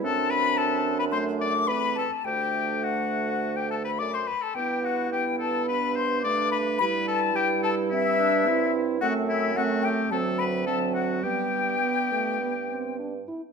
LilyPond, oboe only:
\new Staff \with { instrumentName = "Oboe" } { \time 4/4 \key g \major \tempo 4 = 107 a'8 b'8 a'8. b'16 c''8 d''8 b'8 a'8 | g'4 fis'4~ fis'16 g'16 a'16 b'16 d''16 c''16 b'16 a'16 | g'8 fis'8 g'8 a'8 b'8 c''8 d''8 b'8 | b'8 a'8 g'8 a'8 e'4. r8 |
fis'8 e'8 fis'8 g'8 a'8 b'8 a'8 fis'8 | g'2. r4 | }